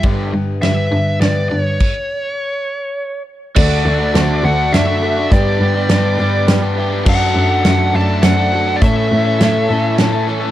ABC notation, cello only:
X:1
M:3/4
L:1/8
Q:1/4=103
K:D
V:1 name="Cello" clef=bass
G,, G,, G,, G,, G,, G,, | z6 | D,, D,, D,, D,, F,,2 | G,, G,, G,, G,, G,,2 |
F,, F,, F,, F,, F,,2 | A,, A,, A,, A,, A,,2 |]